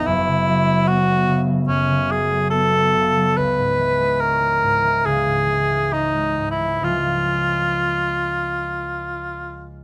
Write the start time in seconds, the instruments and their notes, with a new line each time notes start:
Already playing: harp A1 E2 A3 B3
0.06 harp F#1 F#2, cor anglais E4
0.27 harp C#3
0.48 harp F#3
0.68 harp A3
0.87 harp B3, cor anglais F#4
1.08 harp A3
1.27 harp C#3
1.48 harp F#3
1.67 harp F#2, cor anglais C#4
1.87 harp C#3
2.09 harp F#3, cor anglais G#4
2.29 harp A3
2.50 harp B3, cor anglais A4
2.74 harp A3
2.95 harp C#3
3.16 harp F#3
3.37 harp C#2, cor anglais B4
3.58 harp G#2
3.78 harp E3
4.00 harp G#3
4.20 harp C#4, cor anglais A#4
4.41 harp G#3
4.63 harp G#2
4.83 harp E3
5.06 harp C#2, cor anglais G#4
5.27 harp G#2
5.49 harp E3
5.71 harp G#3
5.92 harp C#4, cor anglais D#4
6.15 harp G#3
6.38 harp G#2
6.51 cor anglais E4
6.62 harp E3
6.81 harp C#2 F3 G#3 C4, cor anglais F4
6.85 harp F4